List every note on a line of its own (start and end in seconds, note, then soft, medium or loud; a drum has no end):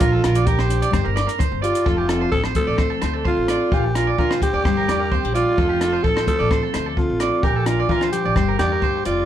0.00 0.20 A#1 loud
0.00 0.43 A#2 medium
0.00 0.23 D4 medium
0.00 0.47 F4 medium
0.00 0.12 A#4 loud
0.00 kick medium
0.00 closed hi-hat medium
0.12 0.23 A4 medium
0.24 0.81 A#1 loud
0.24 0.67 D4 medium
0.24 0.36 A#4 medium
0.24 cross-stick medium
0.24 closed hi-hat medium
0.35 0.47 D5 medium
0.35 closed hi-hat medium
0.46 0.89 A#3 medium
0.46 1.16 G4 medium
0.46 0.59 A#4 medium
0.46 kick loud
0.46 closed hi-hat medium
0.59 0.81 C5 medium
0.59 cross-stick medium
0.69 0.90 D4 medium
0.69 closed hi-hat medium
0.82 0.93 D5 medium
0.82 closed hi-hat medium
0.91 1.03 G1 loud
0.91 1.34 G3 medium
0.91 1.37 D4 medium
0.91 1.05 C5 medium
0.91 kick medium
0.91 cross-stick medium
0.91 closed hi-hat soft
1.05 1.24 G1 medium
1.05 1.16 A#4 medium
1.16 1.83 A#4 medium
1.16 1.28 D5 medium
1.16 cross-stick medium
1.16 closed hi-hat soft
1.27 1.39 A#4 medium
1.27 closed hi-hat soft
1.38 1.81 D4 medium
1.38 1.62 C5 medium
1.38 kick loud
1.38 closed hi-hat medium
1.52 1.70 G1 medium
1.62 2.29 F4 medium
1.62 1.83 G4 medium
1.62 1.85 D5 medium
1.62 closed hi-hat soft
1.75 closed hi-hat soft
1.85 2.24 F1 medium
1.85 3.69 F3 medium
1.85 1.97 A4 medium
1.85 kick medium
1.98 2.08 G4 medium
2.09 2.79 C4 medium
2.09 2.20 A4 medium
2.09 cross-stick medium
2.09 closed hi-hat soft
2.21 2.32 C5 medium
2.32 2.52 A1 medium
2.32 3.69 F4 medium
2.32 2.43 A4 loud
2.32 2.44 A4 medium
2.32 kick medium
2.44 2.67 C5 medium
2.44 cross-stick medium
2.55 3.01 A3 medium
2.55 2.99 A4 medium
2.55 kick medium
2.55 closed hi-hat soft
2.67 2.86 A1 medium
2.67 2.78 D5 medium
2.78 3.25 C4 medium
2.78 2.90 C5 medium
2.78 kick medium
2.78 cross-stick medium
2.90 3.01 A4 medium
3.02 3.31 D2 medium
3.02 3.69 A3 medium
3.02 3.13 C5 medium
3.02 cross-stick medium
3.02 closed hi-hat soft
3.14 3.25 A4 medium
3.25 3.49 C4 medium
3.25 3.75 F4 medium
3.25 3.47 C5 medium
3.25 kick medium
3.37 3.56 A1 medium
3.48 3.73 C4 medium
3.48 3.71 D5 medium
3.48 cross-stick medium
3.48 closed hi-hat soft
3.72 4.09 A#1 medium
3.72 4.63 A#2 medium
3.72 3.83 F4 medium
3.72 3.96 G4 medium
3.72 kick medium
3.84 muted clean electric guitar stroke medium
3.95 4.19 D4 medium
3.95 4.18 F4 medium
3.95 4.07 A#4 medium
3.95 cross-stick medium
3.95 closed hi-hat soft
4.07 4.18 D5 medium
4.19 4.37 D2 medium
4.19 4.63 D4 medium
4.19 4.40 F4 medium
4.19 4.30 A#4 medium
4.19 kick medium
4.30 4.53 C5 medium
4.30 cross-stick medium
4.42 4.63 A#3 medium
4.42 5.31 G4 loud
4.42 kick medium
4.42 closed hi-hat soft
4.53 4.63 D2 medium
4.53 4.65 D5 medium
4.65 4.84 G1 medium
4.65 5.58 G3 medium
4.65 4.76 C5 medium
4.65 kick medium
4.65 cross-stick medium
4.77 4.88 A#4 medium
4.88 5.16 E2 medium
4.88 5.12 D4 medium
4.88 5.00 D5 medium
4.88 cross-stick medium
4.88 closed hi-hat soft
5.00 5.11 A#4 medium
5.12 5.25 C4 medium
5.12 5.34 C5 medium
5.12 kick medium
5.23 5.42 A#1 medium
5.23 5.34 D4 soft
5.35 5.55 D4 medium
5.35 6.05 F4 medium
5.35 5.57 D5 medium
5.35 closed hi-hat soft
5.58 5.95 F1 medium
5.58 7.41 F3 medium
5.58 5.69 A4 medium
5.58 kick medium
5.69 5.80 G4 medium
5.81 6.51 C4 medium
5.81 5.92 A4 medium
5.81 cross-stick medium
5.81 closed hi-hat soft
5.93 6.04 C5 medium
6.03 6.23 A1 medium
6.03 7.41 F4 medium
6.03 6.27 A4 medium
6.03 6.15 A4 medium
6.03 kick medium
6.16 6.38 C5 medium
6.16 cross-stick medium
6.27 6.73 A3 medium
6.27 6.71 A4 medium
6.27 kick medium
6.27 closed hi-hat soft
6.39 6.58 A1 medium
6.39 6.50 D5 medium
6.51 6.96 C4 medium
6.51 6.62 C5 medium
6.51 kick medium
6.51 cross-stick medium
6.63 6.73 A4 medium
6.74 7.02 D2 medium
6.74 7.41 A3 medium
6.74 6.85 C5 medium
6.74 cross-stick medium
6.74 closed hi-hat soft
6.86 6.97 A4 medium
6.97 7.20 C4 medium
6.97 7.45 F4 medium
6.97 kick medium
7.10 7.28 A1 medium
7.20 7.44 C4 medium
7.20 7.42 D5 medium
7.20 cross-stick medium
7.20 closed hi-hat medium
7.43 7.81 A#1 medium
7.43 8.33 A#2 medium
7.43 7.68 G4 medium
7.43 7.55 A#4 medium
7.43 kick medium
7.56 7.66 A4 medium
7.66 8.33 D4 medium
7.66 7.89 F4 medium
7.66 7.78 A#4 medium
7.66 cross-stick medium
7.66 closed hi-hat medium
7.80 7.90 D5 medium
7.89 8.08 D2 medium
7.89 8.12 E3 medium
7.89 8.11 F4 medium
7.89 8.02 A#4 medium
7.89 kick medium
8.01 8.24 C5 medium
8.01 cross-stick medium
8.12 8.36 F3 medium
8.12 8.55 G4 medium
8.12 closed hi-hat soft
8.25 8.34 A1 medium
8.25 8.36 D5 medium
8.36 8.54 G1 loud
8.36 9.25 G3 medium
8.36 8.47 C5 medium
8.36 kick medium
8.36 cross-stick medium
8.48 8.59 A#4 medium
8.59 8.78 E2 medium
8.59 8.81 D4 medium
8.59 9.02 G4 medium
8.59 8.71 D5 medium
8.59 cross-stick medium
8.59 closed hi-hat soft
8.72 8.82 A#4 medium
8.82 9.03 G1 medium
8.82 9.05 D4 medium
8.82 9.05 C5 medium
8.82 kick medium
9.05 9.25 F1 medium
9.05 9.25 F4 medium
9.05 9.25 D5 medium
9.05 closed hi-hat soft